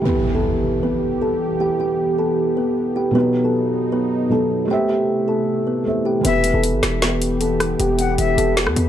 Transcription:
0.02 3.09 E3 medium
0.02 3.12 E3 medium
0.02 4.66 B3 medium
0.02 3.10 E4 medium
0.02 3.12 G4 medium
0.02 0.33 B4 loud
0.02 impact medium
0.06 0.33 B3 medium
0.06 3.12 G4 medium
0.06 3.13 B4 medium
0.35 0.80 A4 medium
0.35 0.80 A5 medium
0.83 1.20 B3 medium
0.83 1.19 B4 medium
1.22 1.58 A4 medium
1.22 1.58 A5 medium
1.60 1.77 G4 loud
1.60 1.78 G5 medium
1.80 1.97 G4 medium
1.80 1.97 G5 medium
2.18 2.35 A4 medium
2.18 2.36 A5 medium
2.57 2.94 B3 medium
2.57 2.93 B4 medium
2.96 3.13 G4 medium
2.96 3.13 G5 medium
3.11 4.27 B2 medium
3.11 4.28 F#3 medium
3.15 4.68 F#3 medium
3.15 3.43 B3 loud
3.15 4.68 D#4 medium
3.15 4.29 D#4 medium
3.15 3.42 B4 loud
3.15 4.31 B4 medium
3.44 3.90 A4 medium
3.44 3.90 A5 medium
3.92 4.29 B3 medium
3.92 4.29 B4 medium
4.29 4.69 B2 medium
4.29 4.69 F#3 soft
4.29 4.70 D#4 soft
4.29 4.68 A4 medium
4.29 4.66 A4 medium
4.29 4.68 A5 medium
4.65 5.81 A3 medium
4.65 5.83 A4 medium
4.70 6.23 C3 medium
4.70 6.23 A3 medium
4.70 6.23 E4 medium
4.70 4.87 G4 medium
4.70 5.84 C5 medium
4.70 5.85 E5 medium
4.70 4.88 G5 medium
4.89 5.06 G4 medium
4.89 5.07 G5 medium
5.28 5.45 A4 medium
5.28 5.46 A5 medium
5.67 6.04 B3 medium
5.67 6.03 B4 medium
5.84 6.24 A3 medium
5.84 6.24 A4 soft
5.84 6.25 C5 soft
5.84 6.25 E5 medium
6.05 6.23 G4 medium
6.05 6.23 G5 medium
6.21 6.53 E1 loud
6.21 8.89 E3 medium
6.21 8.89 B3 medium
6.21 8.89 E4 medium
6.21 8.89 G4 medium
6.21 closed hi-hat medium
6.25 6.53 B3 medium
6.25 8.89 G4 medium
6.25 6.52 B4 loud
6.25 8.89 B4 medium
6.25 6.61 E5 loud
6.44 closed hi-hat medium
6.54 6.75 E1 loud
6.54 6.99 A4 medium
6.54 7.00 A5 medium
6.64 closed hi-hat medium
6.73 6.82 G1 loud
6.83 7.76 E1 loud
6.83 cross-stick medium
6.83 snare loud
6.83 closed hi-hat medium
7.02 7.39 B3 medium
7.02 7.39 B4 medium
7.02 snare loud
7.02 closed hi-hat medium
7.22 closed hi-hat medium
7.41 7.77 A4 medium
7.41 7.78 A5 medium
7.41 closed hi-hat medium
7.60 cross-stick loud
7.60 closed hi-hat medium
7.80 8.17 E1 loud
7.80 7.97 G4 loud
7.80 7.97 G5 medium
7.80 closed hi-hat medium
7.99 8.16 G4 medium
7.99 8.17 F#5 medium
7.99 8.17 G5 medium
7.99 closed hi-hat medium
8.18 8.37 E1 loud
8.18 8.55 E5 medium
8.18 closed hi-hat medium
8.38 8.68 E1 loud
8.38 8.55 A4 medium
8.38 8.55 A5 medium
8.38 closed hi-hat medium
8.57 snare loud
8.57 closed hi-hat medium
8.67 8.76 E2 loud
8.67 cross-stick loud
8.76 8.89 E2 loud
8.76 8.89 B3 medium
8.76 8.89 B4 medium
8.76 closed hi-hat medium

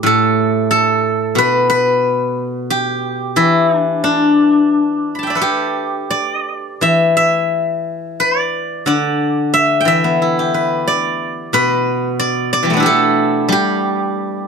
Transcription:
0.00 1.36 A2 medium
0.00 1.07 G4 medium
0.06 0.70 A4 medium
0.71 2.90 A4 medium
1.35 3.36 B2 medium
1.35 1.69 B4 loud
1.70 3.74 B4 medium
2.70 5.06 G4 medium
3.36 5.40 E3 medium
3.36 3.77 E4 medium
3.77 4.04 D4 medium
4.04 6.83 D4 medium
5.15 6.63 A5 soft
5.15 6.50 B5 soft
5.23 6.82 E5 soft
5.23 6.78 G5 soft
5.30 6.10 D5 soft
5.35 7.56 A4 soft
5.35 7.40 B4 soft
5.41 7.77 G4 medium
6.11 7.95 D5 medium
6.81 8.88 E3 soft
6.81 7.16 E5 medium
7.17 8.89 E5 medium
8.20 8.87 D5 medium
8.86 10.86 D3 medium
8.86 10.72 D5 medium
9.54 9.87 E5 medium
9.80 11.36 G5 medium
9.85 11.86 E3 soft
9.85 11.60 E5 medium
10.04 11.37 B3 soft
10.22 11.54 E4 soft
10.39 11.71 G4 soft
10.54 11.53 B4 soft
10.88 12.19 D5 medium
11.53 13.51 B2 medium
11.53 13.58 B4 medium
12.20 12.52 D5 medium
12.53 14.37 D5 medium
12.63 12.83 E3 soft
12.63 12.92 G3 soft
12.70 14.48 A3 soft
12.70 14.48 B3 soft
12.77 14.48 D4 soft
12.77 14.48 E4 medium
12.82 13.52 G4 medium
12.82 14.48 A4 medium
13.49 14.48 G3 medium
13.49 14.48 G4 medium

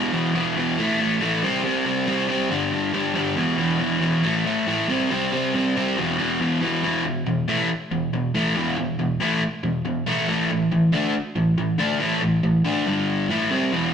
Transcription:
0.00 0.12 E2 loud
0.00 0.12 B2 loud
0.00 0.13 E3 loud
0.13 0.33 E2 medium
0.13 0.34 B2 medium
0.13 0.34 E3 medium
0.34 0.55 E2 medium
0.34 0.56 B2 medium
0.34 0.56 E3 medium
0.56 0.77 E2 medium
0.56 0.77 B2 medium
0.56 0.77 E3 medium
0.78 0.98 A2 medium
0.78 0.99 E3 loud
0.78 1.00 A3 loud
1.00 1.20 A2 medium
1.00 1.20 E3 medium
1.00 1.21 A3 medium
1.21 1.41 A2 medium
1.21 1.42 E3 loud
1.21 1.42 A3 loud
1.43 1.62 C3 medium
1.43 1.63 G3 medium
1.43 1.63 C4 loud
1.64 1.84 C3 loud
1.64 1.84 G3 loud
1.64 1.85 C4 loud
1.85 2.06 C3 medium
1.85 2.06 G3 medium
1.85 2.07 C4 loud
2.07 2.27 C3 medium
2.07 2.27 G3 loud
2.07 2.28 C4 medium
2.28 2.49 C3 medium
2.28 2.49 G3 medium
2.28 2.50 C4 medium
2.50 2.70 G2 loud
2.50 2.71 D3 loud
2.50 2.71 G3 loud
2.72 2.92 G2 medium
2.72 2.92 D3 medium
2.72 2.93 G3 medium
2.93 3.13 G2 medium
2.93 3.14 D3 medium
2.93 3.15 G3 medium
3.14 3.35 G2 medium
3.14 3.36 D3 medium
3.14 3.36 G3 loud
3.36 3.56 E2 loud
3.36 3.57 B2 loud
3.36 3.58 E3 loud
3.57 3.78 E2 medium
3.57 3.79 B2 medium
3.57 3.80 E3 loud
3.79 4.00 E2 loud
3.79 4.00 B2 medium
3.79 4.02 E3 medium
4.01 4.22 E2 medium
4.01 4.22 B2 medium
4.01 4.23 E3 medium
4.23 4.44 A2 loud
4.23 4.45 E3 loud
4.23 4.45 A3 loud
4.45 4.66 A2 medium
4.45 4.67 E3 medium
4.45 4.67 A3 medium
4.67 4.87 A2 medium
4.67 4.89 E3 medium
4.67 4.88 A3 medium
4.89 5.09 C3 loud
4.89 5.10 G3 loud
4.89 5.10 C4 loud
5.11 5.31 C3 loud
5.11 5.32 G3 medium
5.11 5.32 C4 loud
5.32 5.53 C3 medium
5.32 5.54 G3 medium
5.32 5.54 C4 medium
5.54 5.75 C3 medium
5.54 5.75 G3 medium
5.54 5.75 C4 medium
5.76 5.96 C3 medium
5.76 5.96 G3 medium
5.76 5.96 C4 medium
5.97 6.17 E2 loud
5.97 6.18 B2 loud
5.97 6.18 E3 loud
6.19 6.39 E2 medium
6.19 6.40 B2 medium
6.19 6.40 E3 medium
6.41 6.61 E2 medium
6.41 6.61 B2 medium
6.41 6.62 E3 medium
6.62 6.82 E2 medium
6.62 6.82 B2 medium
6.62 6.82 E3 medium
6.83 7.04 E2 medium
6.83 7.04 B2 loud
6.83 7.04 E3 loud
7.05 7.22 E2 medium
7.05 7.22 B2 medium
7.27 7.44 E2 medium
7.27 7.44 B2 medium
7.48 7.69 A2 medium
7.48 7.69 E3 medium
7.48 7.69 A3 loud
7.91 8.08 E2 medium
7.91 8.08 B2 medium
8.13 8.30 E2 medium
8.13 8.30 B2 medium
8.35 8.55 A2 medium
8.35 8.55 E3 loud
8.35 8.56 A3 loud
8.55 8.76 E2 medium
8.55 8.77 B2 loud
8.55 8.77 E3 loud
8.77 8.95 E2 medium
8.77 8.95 B2 medium
8.99 9.16 E2 medium
8.99 9.16 B2 medium
9.20 9.41 A2 medium
9.20 9.41 E3 loud
9.20 9.42 A3 loud
9.63 9.81 E2 medium
9.63 9.81 B2 medium
9.85 10.02 E2 medium
9.85 10.03 B2 medium
10.07 10.27 A2 medium
10.07 10.28 E3 medium
10.07 10.28 A3 loud
10.28 10.49 A2 loud
10.28 10.49 E3 loud
10.28 10.50 A3 loud
10.51 10.67 A2 medium
10.51 10.67 E3 medium
10.72 10.89 A2 medium
10.72 10.89 E3 medium
10.93 11.14 D3 medium
10.93 11.14 A3 loud
10.93 11.14 D4 loud
11.36 11.53 A2 medium
11.36 11.53 E3 medium
11.58 11.75 A2 medium
11.58 11.75 E3 medium
11.78 11.99 D3 medium
11.78 12.00 A3 loud
11.78 12.00 D4 loud
12.00 12.20 A2 loud
12.00 12.21 E3 loud
12.00 12.22 A3 loud
12.21 12.39 A2 medium
12.21 12.39 E3 medium
12.43 12.61 A2 medium
12.43 12.61 E3 medium
12.65 12.86 D3 medium
12.65 12.86 A3 medium
12.65 12.86 D4 loud
12.86 13.29 G2 medium
12.86 13.29 D3 loud
12.86 13.29 G3 loud
13.29 13.50 A2 medium
13.29 13.50 E3 medium
13.29 13.51 A3 loud
13.51 13.72 C3 loud
13.51 13.72 G3 medium
13.51 13.72 C4 medium
13.72 13.93 E2 medium
13.72 13.94 B2 medium
13.72 13.94 E3 loud

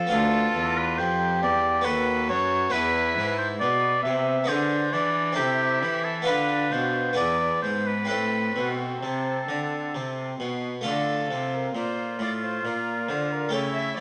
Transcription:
0.00 0.11 A4 loud
0.07 0.51 D2 medium
0.07 1.80 B3 medium
0.07 1.81 F4 medium
0.07 1.82 A4 medium
0.12 0.51 D2 medium
0.12 1.01 F4 loud
0.12 0.79 A4 loud
0.54 1.00 E2 medium
0.54 0.95 E2 medium
0.78 1.00 B4 loud
0.98 1.38 F2 medium
0.98 1.44 F2 medium
0.98 1.86 G4 medium
0.98 1.42 C5 loud
1.43 1.88 E2 medium
1.43 1.83 E2 medium
1.43 1.86 D5 loud
1.81 2.68 B3 medium
1.81 2.69 F#4 medium
1.81 2.70 A4 medium
1.81 2.29 B4 loud
1.86 2.26 D#2 medium
1.86 2.31 D#2 medium
1.86 2.75 F#4 loud
2.29 2.69 F#2 medium
2.29 2.72 F#2 medium
2.29 2.73 C#5 loud
2.70 3.18 E2 medium
2.70 4.00 B3 medium
2.70 4.44 E4 medium
2.70 3.60 E4 loud
2.70 4.45 G#4 medium
2.70 3.37 B4 loud
2.74 3.14 E2 medium
3.16 3.60 G#2 medium
3.16 3.58 G#2 medium
3.38 3.48 C5 loud
3.60 4.04 B2 medium
3.60 4.01 B2 medium
3.60 4.48 B3 medium
3.60 4.02 D5 loud
4.03 4.48 C3 medium
4.03 4.46 C3 medium
4.03 4.50 E5 loud
4.44 5.33 B3 medium
4.44 5.33 E4 medium
4.44 5.35 G#4 medium
4.48 4.92 D3 medium
4.48 4.90 D3 medium
4.48 5.40 D4 medium
4.48 4.95 C5 loud
4.93 5.40 E3 medium
4.93 5.34 E3 medium
4.93 5.35 D5 medium
5.32 6.22 C4 medium
5.32 6.23 E4 medium
5.32 6.06 G4 loud
5.32 6.24 A4 medium
5.37 5.79 C3 medium
5.37 5.84 C3 medium
5.37 6.30 E4 loud
5.83 6.30 E3 medium
5.83 6.24 E3 medium
6.05 6.26 A4 medium
6.22 7.12 B3 medium
6.22 7.14 F4 medium
6.22 7.14 B4 soft
6.26 6.68 D3 medium
6.26 6.72 D3 medium
6.26 7.18 D4 medium
6.26 6.74 B4 loud
6.72 7.14 B2 medium
6.72 7.16 B2 medium
6.72 7.16 C5 medium
7.13 7.62 E2 medium
7.13 8.05 B3 soft
7.13 8.06 E4 soft
7.13 8.07 G#4 soft
7.13 7.61 D5 loud
7.17 7.60 E2 medium
7.17 8.09 B3 medium
7.62 8.10 G#2 medium
7.62 8.06 G#2 medium
7.62 7.88 C5 medium
7.87 8.08 B4 medium
8.05 8.55 A2 medium
8.05 10.79 C4 soft
8.05 10.80 E4 soft
8.05 10.81 A4 soft
8.05 8.72 B4 loud
8.10 8.52 A2 soft
8.10 10.37 C4 medium
8.56 9.01 B2 medium
8.56 8.99 B2 medium
9.01 9.47 C3 medium
9.01 9.45 C3 medium
9.01 10.36 A4 medium
9.48 9.96 D3 medium
9.48 9.91 D3 medium
9.94 10.39 C3 medium
9.94 10.37 C3 medium
10.39 10.84 B2 medium
10.39 10.82 B2 medium
10.81 11.27 D3 medium
10.81 11.27 A3 soft
10.81 13.48 F4 soft
10.81 13.49 A4 soft
10.81 11.55 A4 medium
10.86 11.27 D3 soft
11.30 11.73 C3 medium
11.30 11.72 C3 soft
11.54 11.75 A#4 medium
11.74 12.20 A#2 medium
11.74 12.16 A#2 soft
11.74 13.50 F4 medium
11.74 12.19 C5 medium
12.19 12.63 A2 soft
12.19 12.61 A2 soft
12.19 12.29 D5 medium
12.44 12.67 C5 medium
12.64 13.10 A#2 soft
12.64 13.06 A#2 soft
12.64 13.10 A#4 medium
13.08 13.52 D3 medium
13.08 13.50 D3 soft
13.08 13.33 C5 medium
13.32 13.53 A#4 medium
13.49 14.00 A3 soft
13.49 14.00 G4 soft
13.49 14.00 A4 soft
13.49 13.74 C#5 medium
13.53 13.97 C#3 medium
13.53 13.94 C#3 soft
13.53 14.00 E4 medium
13.74 13.96 E5 medium
13.97 14.00 D5 medium

